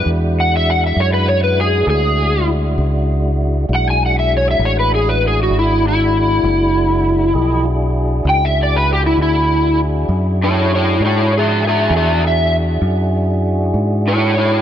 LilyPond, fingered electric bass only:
\new Staff \with { instrumentName = "Fingered electric bass" } { \clef bass \time 12/8 \key e \mixolydian \tempo 4. = 66 e,4. fis,4. d,4. cis,4. | b,,4. a,,4. gis,,4. fis,,4. | b,,4. cis,4. d,4. fis,4. | gis,4. e,4. fis,4. gis,4. | }